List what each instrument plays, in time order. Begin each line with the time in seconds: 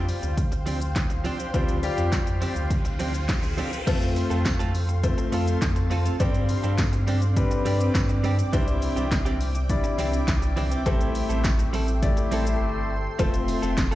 Already playing: sub bass F2, grand piano G3 F4 C5, ambient pad C5 F5 G5 C6
0.08 muted clean electric guitar stroke, open hi-hat, shaker
0.23 sub bass D2, muted clean electric guitar stroke, closed hi-hat, shaker
0.37 kick, closed hi-hat, shaker
0.52 muted clean electric guitar stroke, closed hi-hat, shaker
0.66 clean electric guitar F3 C4 D4 G4, open hi-hat, shaker
0.81 muted clean electric guitar stroke, closed hi-hat, shaker
0.95 muted clean electric guitar stroke, kick, snare, clap, closed hi-hat, tambourine, shaker
1.10 muted clean electric guitar stroke, closed hi-hat, shaker
1.24 clean electric guitar F3 C4 D4 G4, open hi-hat, shaker
1.39 clean electric guitar F3 C4 D4 G4, closed hi-hat, shaker
1.53 sub bass D2, clean electric guitar F3 C4 D4 G4, grand piano G3 F4 C5, kick, closed hi-hat, riser, shaker
1.69 closed hi-hat, shaker
1.83 grand piano G3 F4 G4, muted clean electric guitar stroke, open hi-hat, shaker
1.97 sub bass F2, clean electric guitar F3 C4 D4 G4, closed hi-hat, shaker
2.12 kick, snare, clap, closed hi-hat, tambourine, shaker
2.27 muted clean electric guitar stroke, closed hi-hat, shaker
2.41 clean electric guitar F3 C4 D4 G4, open hi-hat, shaker
2.56 sub bass D2, muted clean electric guitar stroke, closed hi-hat, shaker
2.70 muted clean electric guitar stroke, kick, closed hi-hat, shaker
2.85 muted clean electric guitar stroke, closed hi-hat, shaker
2.99 clean electric guitar F3 C4 D4 G4, open hi-hat, shaker
3.14 muted clean electric guitar stroke, closed hi-hat, shaker
3.29 kick, snare, clap, closed hi-hat, tambourine, shaker
3.43 muted clean electric guitar stroke, closed hi-hat, shaker
3.57 clean electric guitar F3 C4 D4 G4, open hi-hat, shaker
3.72 muted clean electric guitar stroke, closed hi-hat, shaker
3.86 sub bass F2, clean electric guitar A3 C4 F4 A4, grand piano A3 C4 F4 C5, ambient pad C4 A4 F5 C6, kick, closed hi-hat, crash, shaker
4.01 muted clean electric guitar stroke, closed hi-hat, shaker
4.16 muted clean electric guitar stroke, open hi-hat, shaker
4.30 sub bass F2, clean electric guitar A3 C4 F4 A4, closed hi-hat, shaker
4.45 muted clean electric guitar stroke, kick, snare, clap, closed hi-hat, tambourine, shaker
4.59 clean electric guitar A3 C4 F4 A4, closed hi-hat, shaker
4.74 muted clean electric guitar stroke, open hi-hat, shaker
4.89 muted clean electric guitar stroke, closed hi-hat, shaker
5.03 grand piano A3 C4 F4 C5, kick, closed hi-hat, shaker
5.18 muted clean electric guitar stroke, closed hi-hat, shaker
5.32 sub bass F2, clean electric guitar A3 C4 F4 A4, open hi-hat, shaker
5.47 muted clean electric guitar stroke, closed hi-hat, shaker
5.62 sub bass F2, muted clean electric guitar stroke, kick, snare, clap, closed hi-hat, tambourine, shaker
5.76 muted clean electric guitar stroke, closed hi-hat, shaker
5.90 clean electric guitar A3 C4 F4 A4, open hi-hat, shaker
6.05 clean electric guitar A3 C4 F4 A4, closed hi-hat, shaker
6.20 sub bass G2, clean electric guitar G3 C4 D4 G4, grand piano G3 C4 D4 C5, ambient pad D5 G5 D6, kick, closed hi-hat, shaker
6.34 closed hi-hat, shaker
6.49 muted clean electric guitar stroke, open hi-hat, shaker
6.63 sub bass G2, clean electric guitar G3 C4 D4 G4, closed hi-hat, shaker
6.78 muted clean electric guitar stroke, kick, snare, clap, closed hi-hat, tambourine, shaker
6.93 muted clean electric guitar stroke, closed hi-hat, shaker
7.07 clean electric guitar G3 C4 D4 G4, open hi-hat, shaker
7.22 muted clean electric guitar stroke, closed hi-hat, shaker
7.36 grand piano G3 C4 D4 B4, muted clean electric guitar stroke, kick, closed hi-hat, shaker
7.51 muted clean electric guitar stroke, closed hi-hat, shaker
7.65 sub bass G2, clean electric guitar G3 C4 D4 G4, open hi-hat, shaker
7.80 muted clean electric guitar stroke, closed hi-hat, shaker
7.95 sub bass G2, kick, snare, clap, closed hi-hat, tambourine, shaker
8.09 muted clean electric guitar stroke, closed hi-hat, shaker
8.24 clean electric guitar G3 C4 D4 G4, open hi-hat, shaker
8.38 muted clean electric guitar stroke, closed hi-hat, shaker
8.53 sub bass C2, clean electric guitar E3 C4 D4 G4, grand piano G3 D4 E4 C5, ambient pad E5, kick, closed hi-hat, shaker
8.67 muted clean electric guitar stroke, closed hi-hat, shaker
8.82 muted clean electric guitar stroke, open hi-hat, shaker
8.96 sub bass C2, clean electric guitar E3 C4 D4 G4, closed hi-hat, shaker
9.12 kick, snare, clap, closed hi-hat, tambourine, shaker
9.25 clean electric guitar E3 C4 D4 G4, closed hi-hat, shaker
9.40 muted clean electric guitar stroke, open hi-hat, shaker
9.55 muted clean electric guitar stroke, closed hi-hat, shaker
9.69 grand piano G3 D4 E4 D5, kick, closed hi-hat, shaker
9.84 muted clean electric guitar stroke, closed hi-hat, shaker
9.98 sub bass C2, clean electric guitar E3 C4 D4 G4, open hi-hat, shaker
10.13 muted clean electric guitar stroke, closed hi-hat, shaker
10.27 sub bass C2, muted clean electric guitar stroke, kick, snare, clap, closed hi-hat, tambourine, shaker
10.42 muted clean electric guitar stroke, closed hi-hat, shaker
10.56 clean electric guitar E3 C4 D4 G4, open hi-hat, shaker
10.71 clean electric guitar E3 C4 D4 G4, closed hi-hat, shaker
10.86 sub bass A1, clean electric guitar G3 C4 E4 A4, grand piano A3 E4 G4 C5, ambient pad A4 C6, kick, closed hi-hat, shaker
11.01 closed hi-hat, shaker
11.15 muted clean electric guitar stroke, open hi-hat, shaker
11.29 sub bass A1, clean electric guitar G3 C4 E4 A4, closed hi-hat, shaker
11.44 kick, snare, clap, closed hi-hat, tambourine, shaker
11.59 muted clean electric guitar stroke, closed hi-hat, shaker
11.73 clean electric guitar G3 C4 E4 A4, open hi-hat, shaker
11.88 muted clean electric guitar stroke, closed hi-hat, shaker
12.02 grand piano A3 E4 G4 D5, muted clean electric guitar stroke, kick, closed hi-hat, shaker
12.17 muted clean electric guitar stroke, closed hi-hat, shaker
12.31 sub bass A1, clean electric guitar G3 C4 E4 A4, open hi-hat, shaker
12.47 closed hi-hat, shaker
12.61 sub bass G1
13.19 sub bass F1, clean electric guitar A3 C4 F4 A4, grand piano A3 C4 F4 C5, ambient pad A4 C5 F5, kick, closed hi-hat, shaker
13.33 muted clean electric guitar stroke, closed hi-hat, shaker
13.48 muted clean electric guitar stroke, open hi-hat, shaker
13.62 sub bass F1, clean electric guitar A3 C4 F4 A4, closed hi-hat, shaker
13.78 kick, snare, clap, closed hi-hat, tambourine, shaker
13.91 clean electric guitar A4